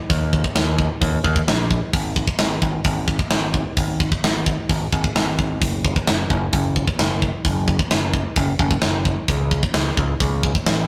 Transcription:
0.10 0.41 D#2 medium
0.10 kick loud
0.10 open hi-hat soft
0.33 kick medium
0.44 kick medium
0.55 0.87 D#2 medium
0.55 snare loud
0.55 open hi-hat medium
0.79 kick medium
1.01 1.17 D#2 medium
1.01 kick loud
1.01 open hi-hat medium
1.24 1.40 D#2 medium
1.24 kick medium
1.36 kick medium
1.48 1.79 A#1 medium
1.48 snare loud
1.48 open hi-hat soft
1.71 kick medium
1.93 2.25 G#1 medium
1.93 kick loud
1.93 open hi-hat medium
2.16 kick medium
2.28 kick medium
2.39 2.56 G#1 medium
2.39 snare loud
2.39 open hi-hat medium
2.62 2.78 G#1 medium
2.62 kick medium
2.84 3.16 G#1 medium
2.84 kick loud
2.84 open hi-hat soft
3.08 kick medium
3.19 kick medium
3.30 3.63 G#1 medium
3.30 snare loud
3.30 open hi-hat soft
3.54 kick medium
3.77 4.09 G#1 medium
3.77 kick loud
3.77 open hi-hat medium
4.00 kick medium
4.12 kick medium
4.24 4.55 G#1 medium
4.24 snare loud
4.24 open hi-hat medium
4.46 kick medium
4.69 4.85 G#1 medium
4.69 kick loud
4.69 open hi-hat medium
4.92 5.08 G#1 medium
4.92 kick medium
5.04 kick medium
5.15 5.62 G#1 medium
5.15 snare loud
5.15 open hi-hat soft
5.39 kick medium
5.62 5.93 F#1 medium
5.62 kick loud
5.62 open hi-hat medium
5.85 kick medium
5.96 kick medium
6.07 6.23 F#1 medium
6.07 snare loud
6.07 open hi-hat medium
6.30 6.46 F#1 medium
6.30 kick medium
6.53 6.84 F#1 medium
6.53 kick loud
6.53 open hi-hat medium
6.76 kick medium
6.87 kick medium
6.99 7.30 F#1 medium
6.99 snare loud
6.99 open hi-hat medium
7.22 kick medium
7.45 7.76 F#1 medium
7.45 kick loud
7.45 open hi-hat medium
7.68 kick medium
7.79 kick medium
7.91 8.22 F#1 medium
7.91 snare loud
7.91 open hi-hat medium
8.14 kick medium
8.36 8.52 F#1 medium
8.36 kick loud
8.36 open hi-hat medium
8.59 8.75 F#1 medium
8.59 kick medium
8.71 kick medium
8.82 9.14 F#1 medium
8.82 snare medium
8.82 open hi-hat soft
9.05 kick medium
9.28 9.60 C#2 medium
9.28 kick loud
9.28 open hi-hat medium
9.51 kick medium
9.63 kick medium
9.74 9.90 C#2 medium
9.74 snare loud
9.74 open hi-hat medium
9.97 10.13 C#2 medium
9.97 kick medium
10.20 10.52 C#2 loud
10.20 kick loud
10.20 open hi-hat medium
10.43 kick medium
10.55 kick medium
10.66 10.87 A1 medium
10.66 snare loud
10.66 open hi-hat medium

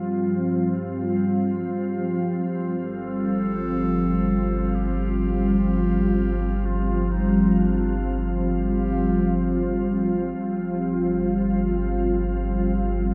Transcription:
0.00 2.87 G2 medium
0.00 13.14 F3 medium
0.00 13.14 G3 medium
0.00 13.14 C4 medium
0.00 13.14 F4 medium
2.86 10.33 G1 medium
2.86 4.76 A4 loud
4.75 6.67 G4 loud
6.66 7.13 F4 medium
7.12 7.60 D#4 medium
7.59 8.24 D4 medium
8.52 9.87 G4 medium
10.38 13.14 G1 medium

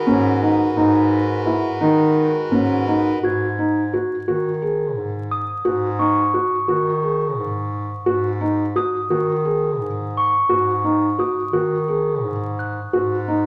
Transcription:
0.00 3.18 G#3 medium
0.00 3.18 F#4 medium
0.00 3.19 A#4 medium
0.00 3.19 B4 medium
0.07 0.64 G#2 medium
0.07 0.28 C#4 medium
0.42 0.63 D#4 medium
0.76 1.62 G#2 loud
0.76 1.18 D#4 medium
1.46 1.67 E4 medium
1.80 2.38 D#3 medium
1.80 2.23 D#4 medium
2.51 3.10 G#2 medium
2.51 2.73 C#4 medium
2.87 3.09 D#4 medium
3.23 4.09 G#2 medium
3.23 3.44 F#4 medium
3.23 4.44 G#6 soft
3.58 3.79 D#4 medium
3.93 4.14 F#4 medium
4.27 4.97 D#3 medium
4.27 4.48 F#4 medium
4.62 5.03 G#4 medium
4.96 5.53 G#2 medium
5.31 6.50 D#6 medium
5.64 6.50 G#2 medium
5.64 5.86 F#4 medium
5.99 6.20 D#4 medium
5.99 7.18 C#6 soft
6.34 6.55 F#4 medium
6.68 7.39 D#3 medium
6.68 6.89 F#4 medium
7.03 7.44 G#4 medium
7.38 7.94 G#2 medium
8.06 8.91 G#2 medium
8.06 8.27 F#4 medium
8.41 8.62 D#4 medium
8.76 8.96 F#4 medium
8.76 9.96 D#6 medium
9.10 9.81 D#3 medium
9.10 9.31 F#4 medium
9.45 9.87 G#4 medium
9.80 10.37 G#2 medium
10.17 11.35 C#6 soft
10.49 11.35 G#2 medium
10.49 10.70 F#4 medium
10.84 11.05 D#4 medium
11.19 11.39 F#4 medium
11.19 12.40 D#6 soft
11.53 12.24 D#3 medium
11.53 11.74 F#4 medium
11.88 12.30 G#4 medium
12.23 12.81 G#2 medium
12.59 13.25 F#6 soft
12.93 13.46 G#2 medium
12.93 13.14 F#4 medium
13.28 13.46 D#4 medium

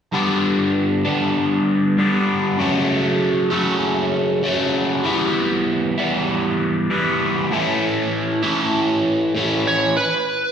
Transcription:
0.12 1.04 G2 soft
0.12 1.04 D3 soft
0.12 1.04 G3 soft
0.12 1.05 B3 medium
0.12 1.04 D4 medium
1.05 1.96 G2 soft
1.05 1.97 D3 soft
1.05 1.97 G3 soft
1.05 1.96 B3 soft
1.05 1.96 D4 soft
1.97 2.57 G2 soft
1.97 2.58 D3 soft
1.97 2.58 G3 soft
1.97 2.59 B3 soft
1.97 2.59 D4 soft
2.58 3.49 F#2 medium
2.58 3.50 C#3 soft
2.58 3.50 F#3 medium
2.58 3.50 A3 medium
2.58 3.49 C#4 medium
3.50 4.42 F#2 soft
3.50 4.42 C#3 soft
3.50 4.43 F#3 soft
3.50 4.42 A3 soft
3.50 4.42 C#4 soft
4.43 5.03 F#2 soft
4.43 5.03 C#3 soft
4.43 5.04 F#3 soft
4.43 5.04 A3 soft
4.43 5.05 C#4 soft
5.04 6.00 E3 soft
5.04 5.96 G3 medium
5.04 5.99 B3 medium
5.04 5.97 E4 medium
5.98 6.89 E3 soft
5.98 6.89 G3 soft
5.98 6.91 B3 soft
5.98 6.88 E4 soft
6.90 7.50 E3 soft
6.90 7.50 G3 soft
6.90 7.53 B3 soft
6.90 7.51 E4 medium
7.51 8.42 A2 medium
7.51 8.42 E3 medium
7.51 8.42 A3 medium
7.51 8.43 C#4 medium
7.51 8.42 E4 medium
8.43 9.33 A2 soft
8.43 9.35 E3 soft
8.43 9.34 A3 soft
8.43 9.34 C#4 soft
8.43 9.33 E4 medium
9.35 9.95 A2 soft
9.35 9.95 E3 soft
9.35 9.96 A3 soft
9.35 9.96 C#4 soft
9.35 9.96 E4 soft
9.67 9.95 C#5 soft
9.97 10.52 B4 medium

